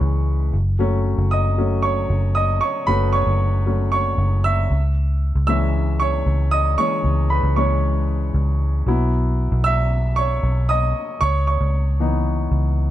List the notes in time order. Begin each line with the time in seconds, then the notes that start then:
Already playing: E3 G#3 C#4 B4 C#5 D#5 B5 C#6 D#6
0.01 C#2
0.53 F#1
0.79 F#3 A3 C#4
1.18 F#1
1.31 D#5 D#6
1.58 F#3 A3 C#4
1.82 C#5 C#6
2.10 F#1
2.35 D#5 D#6
2.61 C#5 C#6
2.87 F#1 F#3 A3 C#4 B4 B5
3.13 C#5 C#6
3.26 F#1
3.66 F#3 A3 C#4
3.92 C#5 C#6
4.18 F#1
4.44 E5 E6
4.70 C#2
5.35 C#2
5.47 E3 G#3 C#4 E5 E6
6.00 C#5 C#6
6.26 C#2
6.51 D#5 D#6
6.78 E3 G#3 C#4 C#5 C#6
7.04 C#2
7.30 B4 B5
7.43 C#2
7.56 E3 G#3 C#4 C#5 C#6
8.34 C#2
8.86 B1 F#3 B3 E4
9.52 B1
9.64 E5 E6
10.16 C#5 C#6
10.43 B1
10.69 D#5 D#6
11.21 C#2 C#5 C#6
11.47 C#5 C#6
11.61 C#2
12.00 E3 B3 D#4
12.51 C#2